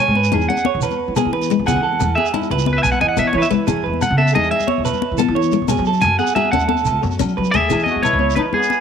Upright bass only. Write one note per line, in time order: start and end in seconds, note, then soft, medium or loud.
0.08 0.27 G#2 loud
0.33 0.46 E2 loud
0.75 0.88 E2 medium
1.08 1.21 E3 medium
1.25 1.51 E3 medium
1.59 1.66 E2 medium
1.68 1.74 C#2 medium
1.76 1.95 E3 medium
2.01 2.14 E2 loud
2.50 2.77 C#2 medium
2.85 2.91 B1 medium
3.02 3.14 E2 loud
3.18 3.31 E3 medium
3.34 3.41 E3 loud
3.51 3.64 E3 loud
3.68 3.81 E2 loud
3.86 3.99 E2 medium
4.10 4.30 C#3 loud
4.37 4.49 E2 medium
4.78 4.91 E2 medium
5.12 5.24 E3 medium
5.28 5.54 E3 loud
5.62 5.68 E2 medium
5.70 5.76 F#2 medium
5.79 5.98 F#3 loud
6.04 6.17 F#2 loud
6.53 6.79 D#2 medium
6.88 6.94 C#2 medium
7.04 7.17 F#2 medium
7.20 7.33 F#3 medium
7.38 7.44 F#3 loud
7.55 7.67 D#2 loud
7.70 7.83 E2 medium
7.96 8.02 E2 medium
8.13 8.33 C#2 medium
8.38 8.51 E3 medium